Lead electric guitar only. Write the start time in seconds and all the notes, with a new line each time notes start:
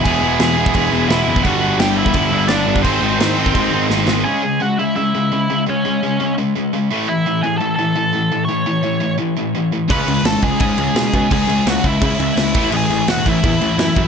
0.04 G#4 G#5
1.09 E4 E5
1.43 F#4 F#5
1.79 G4 G5
1.96 E4 E5
2.48 D4 D5
2.82 C4 C5
4.24 G#4 G#5
4.62 F#4 F#5
4.79 E4 E5
4.96 E4 E5
5.69 C#4 C#5
7.09 E4 E5
7.42 G#4 G#5
7.58 A4 A5
7.76 A4 A5
8.45 C#5 C#6
9.91 B4 B5
10.25 A4 A5
10.43 G#4 G#5
10.59 G#4 G#5
11.32 G#4 G#5
11.67 F#4 F#5
11.85 E4 E5
12.03 E4 E5
12.73 G#4 G#5
13.08 F#4 F#5
13.27 E4 E5